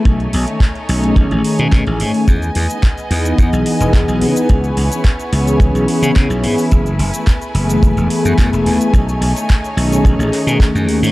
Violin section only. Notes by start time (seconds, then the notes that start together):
Already playing: A3
0.05 D#4 C#5 G#5
2.27 B3 D#5
4.49 E4 C#5
6.71 A3 B4 G#5
8.94 D#4 C#5